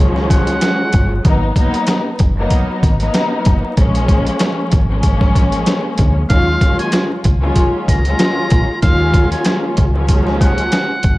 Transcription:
Already playing: fingered electric bass C#2, string section D#2 F3 F#3 G#3 C#4
0.16 snare
0.30 muted trumpet F#5, kick, closed hi-hat
0.47 closed hi-hat
0.61 snare, closed hi-hat
0.93 fingered electric bass G1, kick, closed hi-hat
1.24 fingered electric bass G#1, string section F#3 A#3 B3 D#4, kick, closed hi-hat
1.55 string section F#3 A#3 B3 D#4, kick, closed hi-hat
1.74 closed hi-hat
1.87 snare, closed hi-hat
2.19 fingered electric bass F#1, kick, closed hi-hat
2.37 string section F#3 A#3 B3 D#4
2.50 kick, closed hi-hat
2.83 fingered electric bass G#1, kick, closed hi-hat
2.99 string section F#3 A#3 B3 D#4, closed hi-hat
3.14 snare, closed hi-hat
3.45 fingered electric bass F#1, kick, closed hi-hat
3.77 fingered electric bass A#1, string section F3 G#3 A#3 C#4, kick, closed hi-hat
3.95 closed hi-hat
4.08 kick, closed hi-hat
4.27 closed hi-hat
4.39 snare, closed hi-hat
4.71 fingered electric bass G#1, kick, closed hi-hat
4.88 string section F3 G#3 A#3 C#4
5.03 kick, closed hi-hat
5.21 kick, snare
5.36 kick, closed hi-hat
5.52 closed hi-hat
5.66 snare, closed hi-hat
5.98 fingered electric bass D2, kick, closed hi-hat
6.30 string section D#2 F#3 G#3 C#4 F4, fingered electric bass D#2, muted trumpet F5, kick, closed hi-hat
6.61 string section D#2 F#3 G#3 C#4 F4, kick, closed hi-hat
6.79 muted trumpet G#5, closed hi-hat
6.92 snare, closed hi-hat
7.24 fingered electric bass C#2, kick, closed hi-hat
7.41 string section D#2 F#3 G#3 C#4 F4
7.56 kick, closed hi-hat
7.88 fingered electric bass C#2, muted trumpet A#5, kick, closed hi-hat
8.05 string section D#2 F#3 G#3 C#4 F4, closed hi-hat
8.19 snare, closed hi-hat
8.50 fingered electric bass A#1, kick, closed hi-hat
8.81 string section D#2 F#3 G#3 C#4 F4, fingered electric bass D#2, muted trumpet F5, kick, closed hi-hat
9.14 kick, closed hi-hat
9.32 muted trumpet G#5, closed hi-hat
9.45 snare, closed hi-hat
9.77 fingered electric bass C#2, kick, closed hi-hat
9.94 string section D#2 F3 F#3 G#3 C#4
10.08 kick, closed hi-hat
10.27 snare
10.41 muted trumpet F#5, kick, closed hi-hat
10.58 closed hi-hat
10.72 snare, closed hi-hat
11.03 fingered electric bass G1, kick, closed hi-hat

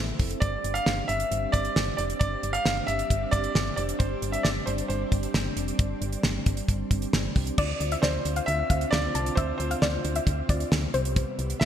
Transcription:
Already playing: fm bass A1, string machine A3 C4 E4
0.19 fm bass F1, kick, open hi-hat
0.31 closed hi-hat
0.40 fm bass G1, string machine G3 C4 D4, grand piano D5, kick, closed hi-hat
0.64 fm bass G1, closed hi-hat
0.74 grand piano F5, closed hi-hat
0.86 fm bass G1, snare
1.08 fm bass G1, grand piano E5, closed hi-hat
1.20 closed hi-hat
1.31 fm bass G1, closed hi-hat
1.52 fm bass G1, grand piano D5, kick, closed hi-hat
1.65 closed hi-hat
1.76 fm bass G1, snare
1.97 fm bass F1, grand piano D5, closed hi-hat
2.10 closed hi-hat
2.19 fm bass G1, grand piano D5, kick, closed hi-hat
2.43 fm bass G1, closed hi-hat
2.53 grand piano F5, closed hi-hat
2.65 fm bass G1, snare
2.87 fm bass G1, grand piano E5, closed hi-hat
2.99 closed hi-hat
3.10 fm bass G1, kick, closed hi-hat
3.31 fm bass G1, grand piano D5, kick, closed hi-hat
3.44 closed hi-hat
3.55 fm bass G1, snare
3.76 fm bass F1, grand piano D5, closed hi-hat
3.89 closed hi-hat
3.99 fm bass G1, grand piano C5, kick, closed hi-hat
4.22 fm bass G1, closed hi-hat
4.32 grand piano E5, closed hi-hat
4.43 fm bass G1, grand piano D5, snare
4.66 fm bass G1, grand piano C5, closed hi-hat
4.78 closed hi-hat
4.88 fm bass G1, grand piano C5, closed hi-hat
5.12 fm bass G1, kick, closed hi-hat
5.23 closed hi-hat
5.34 fm bass G1, snare
5.57 fm bass F1, closed hi-hat
5.68 closed hi-hat
5.79 fm bass G1, kick, closed hi-hat
6.01 fm bass G1, closed hi-hat
6.13 closed hi-hat
6.23 fm bass G1, snare
6.46 fm bass G1, kick, closed hi-hat
6.57 closed hi-hat
6.68 fm bass G1, kick, closed hi-hat
6.91 fm bass G1, kick, closed hi-hat
7.02 closed hi-hat
7.13 fm bass G1, snare
7.36 fm bass C2, kick, open hi-hat
7.47 closed hi-hat
7.58 fm bass D2, string machine D3 F4, synth pluck D5, kick, crash
7.80 fm bass D2, closed hi-hat
7.92 synth pluck E5, closed hi-hat
8.02 fm bass D2, grand piano C5, synth pluck D5, snare
8.25 fm bass D2, closed hi-hat
8.36 synth pluck F5, closed hi-hat
8.46 fm bass D2, grand piano E5, closed hi-hat
8.70 fm bass D2, synth pluck F5, kick, closed hi-hat
8.81 closed hi-hat
8.91 fm bass D2, grand piano D5, snare
9.15 fm bass C2, synth pluck A5, closed hi-hat
9.26 closed hi-hat
9.35 fm bass D2, grand piano C5, synth pluck E5, kick, closed hi-hat
9.58 fm bass D2, grand piano C5, closed hi-hat
9.71 synth pluck F5, closed hi-hat
9.82 fm bass D2, synth pluck D5, snare
10.05 fm bass D2, closed hi-hat
10.16 synth pluck E5, closed hi-hat
10.27 fm bass D2, kick, closed hi-hat
10.49 fm bass D2, synth pluck D5, kick, closed hi-hat
10.60 closed hi-hat
10.72 fm bass D2, snare
10.94 fm bass C2, string machine C3 G3 B3, synth pluck C5, closed hi-hat
11.05 closed hi-hat
11.16 kick, closed hi-hat
11.39 fm bass C2, closed hi-hat
11.50 closed hi-hat
11.60 fm bass C2, grand piano E5, snare

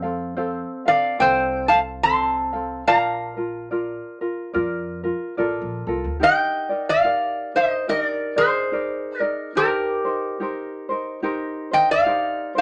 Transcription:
Already playing: upright bass F2
0.02 ukulele C4 A4 F5
0.37 ukulele C4 A4 C5 F5
0.85 ukulele C4 A4 F5, resonator guitar played with a steel bar D5 F5
1.19 upright bass C2, ukulele C4 A4 C5 F5, resonator guitar played with a steel bar C5 G5
1.68 ukulele C4 A4 F5, resonator guitar played with a steel bar F5 A5
2.03 ukulele C4 A4 C5 F5, resonator guitar played with a steel bar A5 C6
2.53 ukulele C4 A4 F5
2.87 upright bass A#1, ukulele F4 A#4 D5, resonator guitar played with a steel bar F5 A#5
3.37 ukulele F4 A#4
3.71 ukulele F4 A#4 D5
4.21 ukulele F4 A#4
4.53 upright bass F2, ukulele F4 A#4 D5
5.03 ukulele F4 A#4
5.37 upright bass A1, ukulele F4 A4 A#4 D5
5.62 upright bass A#1
5.87 upright bass C2, ukulele F4 A4 A#4
6.04 upright bass D2
6.20 ukulele D#4 G4 A#4, resonator guitar played with a steel bar D#5
6.24 resonator guitar played with a steel bar G5
6.69 ukulele D#4 A#4 D5
6.89 resonator guitar played with a steel bar D5 F5
7.04 ukulele D#4 G4 A#4 D5
7.55 ukulele D#4 A#4, resonator guitar played with a steel bar C5 D#5
7.88 ukulele D#4 G4 A#4 D5, resonator guitar played with a steel bar A#4 D#5
8.01 resonator guitar played with a steel bar D5
8.36 ukulele D#4 A#4 D5, resonator guitar played with a steel bar G#4 C5
8.72 ukulele D#4 A#4 D5
9.20 ukulele D#4 A#4 D5, resonator guitar played with a steel bar A#4
9.55 ukulele D#4 G4 A#4 C5, resonator guitar played with a steel bar G4 A#4
10.05 ukulele D#4 A#4 C5
10.40 ukulele D#4 G4 A#4 C5
10.89 ukulele D#4 A#4 C5
11.22 ukulele D#4 G4 A#4 C5
11.71 ukulele D#4 A#4 C5, resonator guitar played with a steel bar D#5 G5
11.91 resonator guitar played with a steel bar D5 F5
12.06 ukulele D#4 G4 A#4 C5
12.55 ukulele D#4 A#4 C5, resonator guitar played with a steel bar C5

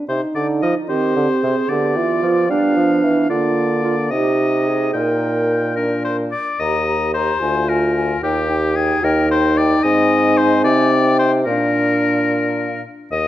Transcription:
0.09 bassoon C3, french horn D#4, oboe C5
0.35 bassoon D3, clarinet D#4, oboe D5
0.62 bassoon F3, oboe D#5
0.89 bassoon D#3, french horn C4, clarinet G4, oboe C5
1.17 bassoon D3
1.42 bassoon C3, clarinet G#4
1.69 bassoon D3, french horn B3, clarinet G4, oboe D5
1.96 bassoon E3, clarinet F4
2.23 bassoon F3
2.49 bassoon G3, french horn B3, clarinet D4, oboe F5
2.76 bassoon F3
3.03 bassoon E3
3.29 bassoon D3, french horn A#3, clarinet F4, oboe D5
3.84 clarinet F4
4.11 bassoon C3, french horn D#4, clarinet G4, oboe D#5
4.66 clarinet G#4
4.94 bassoon A#2, french horn D#4, clarinet A#4, oboe G5
5.76 french horn D4, oboe A#4
6.05 oboe C5
6.32 oboe D5
6.60 bassoon D#2, clarinet G4, oboe D#5, flute A#5
6.87 clarinet G4, flute A#5
7.14 clarinet G4, oboe C5, flute A#5
7.41 bassoon D2, french horn F4, clarinet F4, flute G#5
7.69 clarinet F4, oboe A#4, flute G#5
7.95 clarinet F4, flute G#5
8.22 bassoon D#2, clarinet D#4, french horn G4, oboe G4, flute G5
8.49 clarinet D#4, flute G5
8.76 clarinet D#4, oboe G#4, flute G5
9.03 bassoon D#2, clarinet D#4, french horn D#4, oboe A#4, flute G5
9.29 clarinet D#4, oboe C5, flute G5
9.57 clarinet D#4, oboe D5, flute G5
9.83 bassoon G#2, clarinet C4, oboe D#5, flute G#5
10.38 oboe C5
10.64 bassoon C3, oboe D5
10.92 flute G5
11.19 oboe C5
11.46 bassoon A#2, clarinet D4, french horn D4, oboe A#4, flute F5
13.11 bassoon D#2, oboe D#5

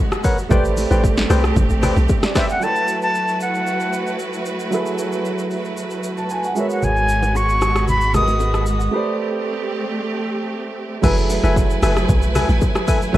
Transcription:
Already playing: grand piano G#3 F#4 A#4 B4 C#5, string section G#3 B3 F#4
0.12 cross-stick, shaker
0.24 synth stab A#4 B4 C#5 F#5, kick, open hi-hat, shaker
0.39 shaker
0.49 log drum bass A1, grand piano A3 G4 B4 C5, string section A3 C4 G4, synth stab B4 C5 D5 G5, kick, low conga, shaker
0.54 grand piano D5
0.65 shaker
0.77 open hi-hat, low bongo, shaker
0.91 log drum bass A1, synth stab B4 C5 D5 G5, low bongo, shaker
1.04 kick, high bongo, shaker
1.18 snare, shaker
1.30 log drum bass C2, synth stab B4 C5 D5 G5, cross-stick, open hi-hat, low bongo, shaker
1.44 cross-stick, high bongo, shaker
1.56 log drum bass A1, kick, low conga, shaker
1.70 log drum bass A1, shaker
1.82 synth stab B4 C5 D5 G5, cross-stick, open hi-hat, high bongo, low conga, shaker
1.96 log drum bass B1, low bongo, shaker
2.09 kick, high bongo, shaker
2.23 grand piano D5, cross-stick, snare, shaker
2.35 synth stab B4 C5 D5 G5, grand piano E5, flute E5, kick, cross-stick, snare, open hi-hat, shaker
2.49 flute F#5, grand piano G5, shaker
2.60 grand piano F#3 E4 F#4 A4, string section F#3 A3 E4 F#4 B4, flute A5, shaker
2.65 grand piano B4
2.75 shaker
2.88 shaker
3.02 flute A5, shaker
3.15 shaker
3.28 shaker
3.40 flute F#5, shaker
3.55 shaker
3.67 shaker
3.80 shaker
3.93 shaker
4.07 shaker
4.19 shaker
4.33 shaker
4.45 shaker
4.60 shaker
4.70 grand piano F#3 E4 G#4 A4, shaker
4.75 grand piano B4
4.86 shaker
4.98 shaker
5.12 shaker
5.25 shaker
5.39 shaker
5.51 shaker
5.65 shaker
5.77 shaker
5.91 shaker
6.04 shaker
6.17 grand piano A5, shaker
6.30 grand piano G#5, shaker
6.44 grand piano F#5, shaker
6.55 grand piano G#3 F#4 A#4 B4, string section G#3 B3 F#4, flute E5, shaker
6.60 grand piano C#5
6.70 flute F#5, shaker
6.82 sub bass G#1, flute G#5, low conga, shaker
6.96 shaker
7.09 shaker
7.22 low bongo, shaker
7.35 flute C#6, high bongo, shaker
7.49 shaker
7.61 cross-stick, low bongo, shaker
7.76 cross-stick, shaker
7.88 flute B5, low conga, shaker
8.01 shaker
8.14 grand piano G#3 F#4 A#4 B4 D#5, flute D#6, cross-stick, high bongo, low conga, shaker
8.28 low bongo, shaker
8.40 high bongo, shaker
8.54 cross-stick, shaker
8.67 shaker
8.81 shaker
8.91 grand piano A3 G4 B4 C5, string section A3 C4 G4
8.96 grand piano D5
11.02 log drum bass F#1, grand piano F#3 E4 G#4 A4, string section F#3 A3 E4 B4 G#5, synth stab A4 B4 E5 G#5, kick, crash, low conga, shaker
11.07 grand piano B4
11.18 shaker
11.30 open hi-hat, low bongo, shaker
11.43 log drum bass F#1, synth stab A4 B4 E5 G#5, low bongo, shaker
11.56 kick, high bongo, shaker
11.70 shaker
11.82 log drum bass F#1, synth stab A4 B4 E5 G#5, cross-stick, open hi-hat, low bongo, shaker
11.96 cross-stick, high bongo, shaker
12.09 log drum bass B1, kick, low conga, shaker
12.22 shaker
12.35 synth stab A4 B4 E5 G#5, cross-stick, open hi-hat, low conga, shaker
12.49 log drum bass A1, low bongo, shaker
12.61 kick, high bongo, shaker
12.75 cross-stick, shaker
12.88 synth stab A4 B4 E5 G#5, kick, open hi-hat, shaker
13.02 shaker
13.12 log drum bass F#1, grand piano F#3 E4, synth stab A4 B4 E5, string section C#5, kick, low conga, shaker

